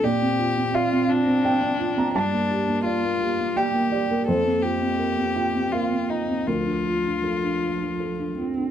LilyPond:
<<
  \new Staff \with { instrumentName = "Felt piano" } { \time 3/4 \key bes \major \tempo 4 = 84 << { d''4 f''4 g''8. bes''16 | a''2 g''8 d''16 bes'16 | c''4. g''8 f''4 | bes'4 r2 | } \\ { bes,16 c'16 f'16 c'16 d''16 c'16 f'16 c'16 d''16 c'16 f'16 c'16 | g,16 bes16 g'16 bes16 d''16 bes16 g'16 bes16 d''16 bes16 g'16 bes16 | f,16 c'16 f'16 c'16 bes'16 c'16 f'16 c'16 bes'16 c'16 f'16 c'16 | d,16 d'16 f'16 d'16 a'16 d'16 f'16 d'16 a'16 d'16 f'16 d'16 | } >> }
  \new Staff \with { instrumentName = "Violin" } { \time 3/4 \key bes \major g'4 f'8 d'4. | d'4 f'4 g'4 | a'8 g'4. f'8 ees'8 | f'2~ f'8 r8 | }
  \new Staff \with { instrumentName = "Cello" } { \time 3/4 \key bes \major c'2. | bes2. | bes2 bes4 | f4 f4. c'8 | }
>>